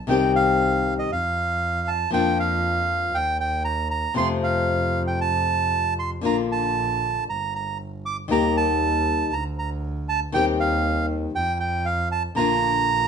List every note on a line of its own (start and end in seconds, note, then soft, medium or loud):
0.07 1.05 C2 medium
0.07 1.08 C3 medium
0.07 1.09 D#3 medium
0.07 1.09 G3 medium
0.07 1.10 C4 medium
0.07 1.10 G4 medium
0.07 0.32 G5 medium
0.36 0.94 F5 medium
0.99 1.11 D#5 medium
1.10 2.06 F2 medium
1.10 1.89 F5 medium
1.88 2.10 A5 medium
2.10 3.08 F2 medium
2.10 3.12 F3 medium
2.10 3.12 A#3 medium
2.10 3.13 D4 medium
2.10 3.13 F4 medium
2.10 2.38 G5 loud
2.40 3.17 F5 medium
3.13 4.10 D#2 medium
3.13 3.38 G5 medium
3.40 3.63 G5 medium
3.65 3.88 A#5 medium
3.91 4.14 A#5 medium
4.14 6.12 F2 medium
4.14 6.21 C3 medium
4.14 6.21 F3 medium
4.14 6.22 A3 medium
4.14 6.23 C4 medium
4.14 6.23 F4 medium
4.14 4.28 C6 loud
4.43 5.03 F5 medium
5.07 5.20 G5 medium
5.21 5.94 A5 medium
5.99 6.10 C6 medium
6.21 7.21 A#1 medium
6.21 7.25 D3 medium
6.21 7.77 A#3 medium
6.21 7.26 D4 medium
6.21 7.27 F4 medium
6.26 6.37 A#5 medium
6.52 7.24 A5 medium
7.26 8.24 G1 medium
7.26 7.54 A#5 medium
7.55 7.78 A#5 medium
8.06 8.17 D6 medium
8.28 9.26 D#2 medium
8.28 9.29 D#3 medium
8.28 9.30 G3 medium
8.28 9.31 A#3 medium
8.28 9.31 D#4 medium
8.28 9.31 G4 medium
8.28 8.57 A#5 loud
8.57 9.34 A5 medium
9.31 10.28 D2 medium
9.31 9.44 A#5 medium
9.59 9.70 A#5 medium
10.09 10.20 A5 loud
10.32 11.29 D#2 medium
10.32 11.33 D#3 medium
10.32 11.33 G3 medium
10.32 11.34 C4 medium
10.32 11.34 G4 loud
10.32 10.45 G5 loud
10.60 11.06 F5 medium
11.34 12.30 F2 medium
11.34 11.58 G5 medium
11.60 11.86 G5 medium
11.85 12.09 F5 medium
12.12 12.23 A5 medium
12.35 13.08 A#1 medium
12.35 13.08 D3 medium
12.35 13.08 A#3 medium
12.35 13.08 D4 medium
12.35 13.08 F4 loud
12.35 13.08 A#5 loud